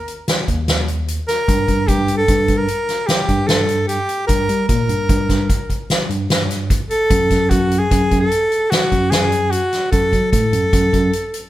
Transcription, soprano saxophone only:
0.00 0.24 A#4 medium
1.28 1.89 A#4 medium
1.88 2.16 G4 medium
2.17 2.59 A4 medium
2.57 3.08 A#4 medium
3.07 3.49 G4 medium
3.47 3.87 A4 medium
3.88 4.25 G4 medium
4.27 4.65 A#4 medium
4.68 5.85 A#4 medium
6.90 7.51 A4 medium
7.50 7.80 F#4 medium
7.79 8.20 G#4 medium
8.20 8.72 A4 medium
8.70 9.12 F#4 medium
9.11 9.52 G#4 medium
9.51 9.91 F#4 medium
9.91 10.29 A4 medium
10.32 11.49 A4 medium

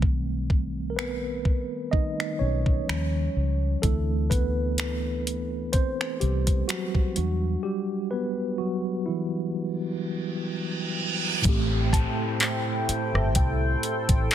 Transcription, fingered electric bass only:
0.00 1.46 B1 loud
2.41 2.79 B1 medium
2.89 3.27 D#2 medium
3.36 3.74 C#2 medium
3.84 5.70 D2 loud
6.22 6.60 C2 medium
7.17 7.55 E2 medium
11.46 12.04 A1 loud
12.89 muted fingered electric bass stroke soft
13.14 13.36 G1 medium
13.36 13.74 C2 loud
14.09 14.27 A1 medium

